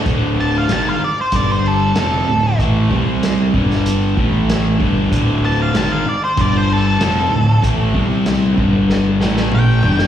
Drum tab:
HH |x---x---x---x---|x---x---x---x---|x---x---x---x---|x---x-----------|
SD |----o-------o---|----o--o----o---|----o-------o---|----o---o-oo---o|
T2 |----------------|----------------|----------------|------------o---|
FT |----------------|----------------|----------------|--------------o-|
BD |o-------o-------|o-o---o---o---o-|o-------o-------|o-o---o---------|